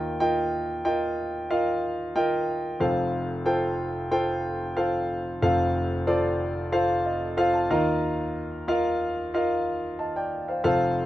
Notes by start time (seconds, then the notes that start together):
Already playing: D#2 D#3 F4 A#4 D#5 F5 G5
0.20 F4 A#4 D#5 G5
0.85 F4 A#4 D#5 G5
1.50 F4 A#4 D#5 F5
2.16 F4 A#4 D#5 G5
2.80 F1 F2 F4 A4 C5 F5
3.45 F4 A4 C5 G5
4.11 F4 A4 C5 G5
4.76 F4 A4 C5 F5
5.42 F1 F2 F4 A4 C5 F5
6.07 F4 A4 C5 D5
6.72 F4 A4 C5 F5
7.06 D#5
7.37 F4 A4 C5 F5
7.53 A5
7.70 D#2 D#3 F4 A#4 D#5 F5 A#5
8.68 F4 A#4 D#5 F5
9.34 F4 A#4 D#5 F5
9.99 D#5 A5
10.16 D5 G5
10.48 C5 F5
10.64 F1 F2 F4 A4 C5 F5